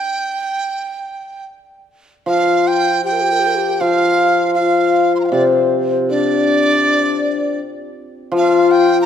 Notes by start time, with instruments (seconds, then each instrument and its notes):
Already playing: dizi G5
2.26 hammered dulcimer F3, xiao F4, dizi F5
2.67 dizi G5
3.04 xiao G4, dizi G5
3.12 xiao A#4
3.21 xiao G4
3.32 xiao A#4
3.40 xiao G4
3.46 xiao A#4
3.55 xiao G4
3.79 hammered dulcimer F3, xiao G4, dizi F5
3.84 xiao F4
4.54 dizi F5
4.59 xiao F4
5.16 dizi C6
5.20 dizi A#5
5.25 dizi F5 G5
5.32 hammered dulcimer C3, xiao C5, dizi D5
5.90 xiao C5
6.10 xiao D4, dizi D5
8.32 hammered dulcimer F3, xiao F4
8.37 dizi F5
8.71 dizi G5
9.02 dizi A#5